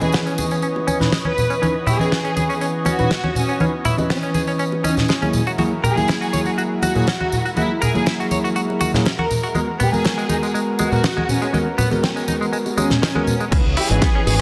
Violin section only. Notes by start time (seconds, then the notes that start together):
0.02 G#4
1.26 B4
1.87 G#4
2.87 F#4
3.36 C#4
4.10 C#4
4.84 C#4
5.84 G#4
6.83 F#4
7.57 E4
7.82 G#4
7.95 G#4
9.19 A#4
9.80 G#4
10.80 F#4
11.29 C#4
12.03 C#4
12.77 C#4
13.77 G#4